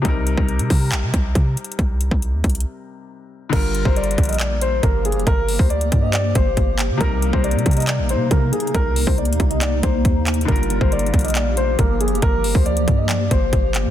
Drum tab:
CC |------------------------------------------------------------------------------------------------|------------------------------------------------------------------------------------------------|x-----------------------------------------------------------------------------------------------|------------------------------------------------------------------------------------------------|
HH |x-----------x-----------x-----x-----o-----------x-----------x-----------x-----------x---x---x---|x-----------x-----------x-----------x--x--x--x--------------------------------------------------|x-----------x-----------x---x---x---x--xx-x-xx--x-----------x-----------x-----------x---x---x---|x-----------o-----------x-----x-----x-----------x-----------x-----------x-----------x-----------|
CP |------------------------------------------------x-----------------------------------------------|------------------------------------------------------------------------------------------------|------------------------------------------------x-----------------------------------------------|------------------------------------------------x-----------------------------------x-----------|
BD |o-----------------o-----------------o-----------------------o-----------o-----------------------|o-----------------o-----------------o-----------------------------------------------------------|o-----------------o-----------------o-----------------------------------o-----------------------|o-----------------o-----------------o-----------------------o-----------o-----------------------|

CC |------------------------------------------------------------------------------------------------|------------------------------------------------------------------------------------------------|------------------------------------------------------------------------------------------------|------------------------------------------------------------------------------------------------|
HH |x-----------x-----------x---x---x---x--xx-x-xx--------------x-----------x-----------x---x---x---|x-----------o-----------x---x---x---x-----x-----x-----------x-----------x-----------x---x---x---|x---x---x---x-----------x---x---x---x--xx-x-xx--x-----------x-----------x-----------x---x---x---|x-----------o-----------x-----x-----x-----------x-----------x-----------x-----------x-----------|
CP |------------------------------------------------x-----------------------------------------------|------------------------------------------------x-----------------------------------x-----------|------------------------------------------------x-----------------------------------------------|------------------------------------------------x-----------------------------------x-----------|
BD |o-----------------o-----------------o-----------------------------------o-----------------------|o-----------------o-----------------o-----------------------o-----------o-----------------------|o-----------------o-----------------o-----------------------------------o-----------------------|o-----------------o-----------------o-----------------------o-----------o-----------------------|